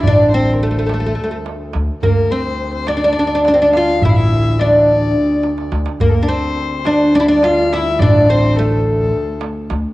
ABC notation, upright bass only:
X:1
M:7/8
L:1/16
Q:1/4=106
K:none
V:1 name="Upright bass" clef=bass
A,,,8 z4 D,, z | D,,8 z6 | A,,,8 z4 D,, z | D,,8 z6 |
A,,,8 z4 D,, z |]